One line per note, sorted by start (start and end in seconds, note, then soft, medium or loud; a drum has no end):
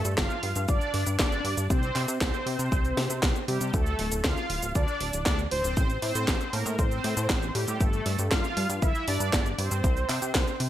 0.00 0.15 A3 medium
0.00 0.19 A4 loud
0.05 0.16 G2 loud
0.05 closed hi-hat soft
0.05 cabasa medium
0.17 0.28 G1 loud
0.17 0.65 F4 medium
0.17 0.70 F5 loud
0.17 kick loud
0.17 snare loud
0.17 clap loud
0.17 closed hi-hat medium
0.17 cabasa soft
0.30 closed hi-hat soft
0.30 cabasa soft
0.43 0.54 G2 medium
0.43 open hi-hat loud
0.56 0.67 G2 loud
0.56 closed hi-hat medium
0.56 cabasa medium
0.68 0.79 G1 loud
0.68 1.16 D4 medium
0.68 1.16 D5 loud
0.68 kick loud
0.68 closed hi-hat medium
0.68 cabasa soft
0.81 closed hi-hat soft
0.81 cabasa soft
0.94 1.05 G2 loud
0.94 open hi-hat loud
1.07 1.17 G2 medium
1.07 closed hi-hat medium
1.07 cabasa medium
1.19 1.41 G1 medium
1.19 1.67 D4 medium
1.19 1.66 D5 loud
1.19 kick loud
1.19 snare loud
1.19 clap medium
1.19 closed hi-hat soft
1.19 cabasa soft
1.32 closed hi-hat soft
1.32 cabasa soft
1.45 1.55 G2 medium
1.45 open hi-hat loud
1.57 1.68 G2 medium
1.57 closed hi-hat medium
1.57 cabasa medium
1.70 1.92 C2 loud
1.70 2.18 C4 medium
1.70 2.17 C5 loud
1.70 kick loud
1.70 closed hi-hat medium
1.70 cabasa soft
1.83 closed hi-hat soft
1.83 cabasa soft
1.96 2.06 C3 loud
1.96 clap soft
1.96 open hi-hat loud
2.08 2.19 C3 loud
2.08 closed hi-hat soft
2.08 cabasa medium
2.21 2.32 C2 loud
2.21 3.45 C4 medium
2.21 3.44 C5 loud
2.21 kick loud
2.21 snare loud
2.21 clap medium
2.21 closed hi-hat medium
2.21 cabasa medium
2.34 closed hi-hat soft
2.34 cabasa soft
2.46 2.57 C3 medium
2.46 open hi-hat loud
2.59 2.70 C3 loud
2.59 closed hi-hat medium
2.59 cabasa medium
2.72 2.93 C2 medium
2.72 kick loud
2.72 closed hi-hat soft
2.72 cabasa soft
2.85 closed hi-hat soft
2.85 cabasa soft
2.97 3.08 C3 medium
2.97 snare medium
2.97 open hi-hat loud
3.10 3.21 C3 loud
3.10 closed hi-hat soft
3.10 cabasa medium
3.23 3.33 C2 medium
3.23 kick loud
3.23 snare loud
3.23 clap medium
3.23 closed hi-hat medium
3.23 cabasa soft
3.36 closed hi-hat soft
3.36 cabasa soft
3.48 3.59 C3 medium
3.48 3.72 G3 medium
3.48 3.72 G4 loud
3.48 open hi-hat loud
3.61 3.72 C3 medium
3.61 closed hi-hat soft
3.61 cabasa medium
3.73 3.95 D2 loud
3.73 4.21 A3 medium
3.73 4.26 A4 loud
3.73 kick loud
3.73 closed hi-hat soft
3.73 cabasa medium
3.86 closed hi-hat soft
3.86 cabasa soft
3.99 4.10 D1 loud
3.99 open hi-hat loud
4.12 4.22 D1 loud
4.12 closed hi-hat medium
4.12 cabasa medium
4.24 4.35 D2 loud
4.24 4.72 F4 medium
4.24 4.72 F5 loud
4.24 kick loud
4.24 snare loud
4.24 clap medium
4.24 closed hi-hat medium
4.24 cabasa medium
4.37 closed hi-hat soft
4.37 cabasa soft
4.50 4.61 D1 medium
4.50 open hi-hat loud
4.62 4.73 D1 loud
4.62 closed hi-hat medium
4.62 cabasa medium
4.75 4.86 D2 loud
4.75 5.23 D4 medium
4.75 5.25 D5 loud
4.75 kick loud
4.75 closed hi-hat soft
4.75 cabasa medium
4.88 closed hi-hat soft
4.88 cabasa soft
5.00 5.11 D1 loud
5.00 open hi-hat loud
5.13 5.24 D1 medium
5.13 closed hi-hat medium
5.13 cabasa medium
5.26 5.47 D2 medium
5.26 5.38 D4 medium
5.26 5.37 D5 loud
5.26 kick loud
5.26 snare loud
5.26 clap medium
5.26 closed hi-hat soft
5.26 cabasa medium
5.39 closed hi-hat soft
5.39 cabasa soft
5.51 5.62 D1 medium
5.51 5.99 C4 medium
5.51 6.00 C5 loud
5.51 open hi-hat loud
5.64 5.75 D1 medium
5.64 closed hi-hat soft
5.64 cabasa medium
5.77 5.98 A1 loud
5.77 kick loud
5.77 closed hi-hat medium
5.77 cabasa medium
5.90 closed hi-hat soft
5.90 cabasa soft
6.02 6.13 A2 loud
6.02 6.50 C4 medium
6.02 6.54 C5 loud
6.02 open hi-hat loud
6.15 6.26 A2 loud
6.15 closed hi-hat soft
6.15 cabasa medium
6.28 6.39 A1 loud
6.28 kick loud
6.28 snare loud
6.28 clap medium
6.28 closed hi-hat medium
6.28 cabasa medium
6.41 closed hi-hat soft
6.41 cabasa soft
6.53 6.64 A2 medium
6.53 6.77 A#3 medium
6.53 6.79 A#4 medium
6.53 open hi-hat loud
6.66 6.77 A2 loud
6.66 closed hi-hat soft
6.66 cabasa medium
6.78 7.00 A1 medium
6.78 7.51 C4 medium
6.78 7.57 C5 loud
6.78 kick loud
6.78 closed hi-hat soft
6.78 cabasa medium
6.91 closed hi-hat soft
6.91 cabasa soft
7.04 7.15 A2 medium
7.04 open hi-hat loud
7.17 7.28 A2 loud
7.17 closed hi-hat medium
7.17 cabasa medium
7.30 7.51 A1 loud
7.30 kick loud
7.30 snare loud
7.30 clap medium
7.30 closed hi-hat medium
7.30 cabasa medium
7.42 closed hi-hat soft
7.42 cabasa soft
7.55 7.66 A2 loud
7.55 7.79 G3 medium
7.55 7.81 G4 loud
7.55 open hi-hat loud
7.68 7.78 A2 medium
7.68 closed hi-hat medium
7.68 cabasa medium
7.80 8.02 G1 loud
7.80 8.28 A3 medium
7.80 8.33 A4 loud
7.80 kick loud
7.80 closed hi-hat medium
7.80 cabasa soft
7.93 closed hi-hat soft
7.93 cabasa soft
8.06 8.17 G2 loud
8.06 open hi-hat loud
8.19 8.29 G2 loud
8.19 closed hi-hat medium
8.19 cabasa medium
8.31 8.42 G1 loud
8.31 8.79 F4 medium
8.31 8.84 F5 loud
8.31 kick loud
8.31 snare loud
8.31 clap medium
8.31 closed hi-hat medium
8.31 cabasa soft
8.44 closed hi-hat soft
8.44 cabasa soft
8.57 8.67 G2 medium
8.57 open hi-hat loud
8.69 8.80 G2 loud
8.69 closed hi-hat medium
8.69 cabasa medium
8.82 8.93 G1 loud
8.82 9.06 E4 medium
8.82 9.08 E5 loud
8.82 kick loud
8.82 closed hi-hat medium
8.82 cabasa soft
8.95 closed hi-hat soft
8.95 cabasa soft
9.08 9.18 G2 medium
9.08 9.55 D4 medium
9.08 9.60 D5 loud
9.08 open hi-hat loud
9.20 9.31 G2 medium
9.20 closed hi-hat medium
9.20 cabasa medium
9.33 9.54 G1 medium
9.33 kick loud
9.33 snare loud
9.33 clap medium
9.33 closed hi-hat medium
9.33 cabasa medium
9.46 closed hi-hat soft
9.46 cabasa soft
9.58 9.69 G2 medium
9.58 10.69 C4 medium
9.58 10.69 C5 loud
9.58 open hi-hat loud
9.71 9.82 G2 medium
9.71 closed hi-hat medium
9.71 cabasa medium
9.84 10.05 C2 loud
9.84 kick loud
9.84 closed hi-hat medium
9.84 cabasa soft
9.97 closed hi-hat soft
9.97 cabasa soft
10.09 10.20 C3 loud
10.09 clap medium
10.09 open hi-hat loud
10.22 10.33 C3 loud
10.22 closed hi-hat medium
10.22 cabasa medium
10.35 10.45 C2 loud
10.35 kick loud
10.35 snare loud
10.35 clap medium
10.35 closed hi-hat medium
10.35 cabasa medium
10.47 closed hi-hat soft
10.47 cabasa soft
10.60 10.69 C3 medium
10.60 open hi-hat loud